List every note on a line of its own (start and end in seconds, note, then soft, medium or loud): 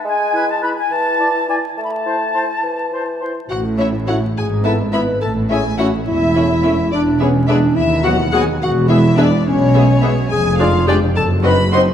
0.05 0.75 G#3 medium
0.05 0.47 G#5 medium
0.33 0.43 E4 soft
0.33 0.45 B4 soft
0.49 0.62 A5 medium
0.62 0.73 E4 soft
0.62 0.72 B4 soft
0.62 0.69 B5 medium
0.78 0.91 G#5 medium
0.91 1.62 E3 medium
0.91 1.48 A5 medium
1.20 1.30 E4 soft
1.20 1.30 D5 soft
1.48 1.58 E4 soft
1.48 1.59 D5 soft
1.48 1.54 G#5 medium
1.77 2.49 A3 medium
1.77 1.80 A5 medium
1.84 1.91 B5 soft
1.91 3.21 A5 medium
2.06 2.16 E4 soft
2.06 2.17 C5 soft
2.34 2.44 E4 soft
2.34 2.45 C5 soft
2.63 3.36 E3 soft
2.91 3.02 E4 soft
2.91 3.04 C5 soft
3.21 3.32 E4 soft
3.21 3.31 C5 soft
3.49 4.22 A1 medium
3.49 4.21 A2 medium
3.49 3.63 F#4 medium
3.49 3.58 F#5 medium
3.78 3.86 A3 soft
3.78 3.90 C#4 soft
3.78 3.86 E4 soft
3.78 3.92 E4 soft
3.78 3.90 E4 soft
3.78 3.86 C#5 soft
3.78 3.87 E5 soft
4.07 4.16 A3 soft
4.07 4.19 C#4 soft
4.07 4.16 E4 soft
4.07 4.19 E4 soft
4.07 4.20 F#4 medium
4.07 4.15 C#5 soft
4.07 4.16 F#5 medium
4.35 5.07 G#1 medium
4.35 5.07 G#2 medium
4.35 4.64 G#4 medium
4.35 4.45 G#5 medium
4.63 4.71 B3 soft
4.63 4.76 B3 soft
4.63 4.72 E4 soft
4.63 4.76 E4 soft
4.63 4.78 A4 medium
4.63 4.72 E5 soft
4.63 4.73 A5 medium
4.92 5.00 B3 soft
4.92 5.05 B3 soft
4.92 5.00 E4 soft
4.92 5.20 B4 medium
4.92 5.01 E5 soft
4.92 5.01 B5 medium
4.96 5.06 E4 soft
5.21 5.93 A1 medium
5.21 5.93 A2 medium
5.21 5.34 A4 medium
5.21 5.30 A5 medium
5.49 5.60 A3 soft
5.49 5.57 C#4 soft
5.49 5.60 C#4 soft
5.49 5.57 E4 soft
5.49 5.64 G#4 medium
5.49 5.57 E5 soft
5.49 5.78 G#5 medium
5.77 5.89 A3 soft
5.77 5.86 C#4 soft
5.77 5.89 C#4 soft
5.77 5.86 E4 soft
5.77 5.92 F#4 medium
5.77 5.85 E5 soft
5.77 5.86 F#5 medium
6.06 6.78 E1 medium
6.06 6.78 E2 medium
6.06 6.91 E4 medium
6.06 6.90 E5 medium
6.34 6.43 C#4 soft
6.34 6.43 E4 soft
6.34 6.42 E5 soft
6.39 6.48 A3 soft
6.39 6.48 C#4 soft
6.61 6.71 C#4 soft
6.61 6.71 E4 soft
6.61 6.69 E5 soft
6.66 6.75 A3 medium
6.66 6.76 C#4 soft
6.92 7.63 E1 medium
6.92 7.63 E2 medium
6.92 7.23 D4 medium
6.92 7.00 D5 medium
7.19 7.32 G#3 soft
7.19 7.28 B3 soft
7.19 7.32 B3 soft
7.19 7.48 C#4 medium
7.19 7.28 G#4 soft
7.19 7.30 C#5 soft
7.19 7.27 E5 soft
7.47 7.59 G#3 soft
7.47 7.57 B3 soft
7.47 7.59 B3 medium
7.47 7.77 D4 medium
7.47 7.57 G#4 soft
7.47 7.57 D5 medium
7.47 7.55 E5 medium
7.76 8.48 D#2 medium
7.76 8.03 E4 medium
7.76 8.05 E5 medium
8.03 8.17 F#3 medium
8.03 8.13 B3 soft
8.03 8.17 B3 soft
8.03 8.17 F#4 medium
8.03 8.14 F#4 soft
8.03 8.11 F#5 soft
8.03 8.34 F#5 medium
8.32 8.45 F#3 medium
8.32 8.41 B3 soft
8.32 8.45 B3 medium
8.32 8.41 F#4 medium
8.32 8.46 G#4 medium
8.32 8.40 F#5 soft
8.32 8.42 G#5 medium
8.62 9.33 E1 medium
8.62 9.33 E2 medium
8.62 8.89 F#4 medium
8.62 8.70 F#5 medium
8.88 9.01 G#3 soft
8.88 8.97 B3 medium
8.88 9.01 B3 medium
8.88 9.17 E4 medium
8.88 8.97 G#4 soft
8.88 8.96 E5 medium
8.88 9.17 E5 medium
9.17 9.29 G#3 medium
9.17 9.25 B3 soft
9.17 9.29 B3 medium
9.17 9.30 D4 medium
9.17 9.25 G#4 soft
9.17 9.46 D5 medium
9.17 9.26 E5 medium
9.46 10.17 B1 medium
9.46 10.17 B2 medium
9.46 10.03 C#4 medium
9.46 10.30 C#5 medium
9.74 9.85 G#3 medium
9.74 9.83 B3 soft
9.74 9.85 B3 medium
9.74 9.83 G#4 medium
9.74 9.82 E5 soft
10.02 10.14 G#3 medium
10.02 10.10 B3 medium
10.02 10.14 B3 medium
10.02 10.10 G#4 soft
10.02 10.11 E5 medium
10.30 11.02 F1 medium
10.30 11.02 F2 medium
10.30 10.62 G#4 medium
10.30 10.59 G#5 medium
10.58 10.71 G#3 medium
10.58 10.67 D4 soft
10.58 10.71 D4 medium
10.58 10.87 F4 medium
10.58 10.67 G#4 soft
10.58 10.68 D5 soft
10.58 10.87 F5 medium
10.86 10.99 G#3 medium
10.86 10.95 D4 medium
10.86 10.99 D4 medium
10.86 11.00 G4 medium
10.86 10.94 G#4 soft
10.86 10.96 D5 medium
10.86 10.95 G5 medium
11.15 11.87 F#1 medium
11.15 11.87 F#2 medium
11.15 11.29 A4 medium
11.15 11.23 A5 medium
11.43 11.51 C4 soft
11.43 11.51 F#4 soft
11.43 11.58 B4 medium
11.43 11.52 D#5 medium
11.43 11.72 B5 medium
11.47 11.57 C4 medium
11.47 11.57 D#4 medium
11.72 11.80 C4 medium
11.72 11.80 F#4 medium
11.72 11.86 C5 medium
11.72 11.81 D#5 soft
11.72 11.80 C6 medium
11.76 11.86 C4 medium
11.76 11.86 D#4 medium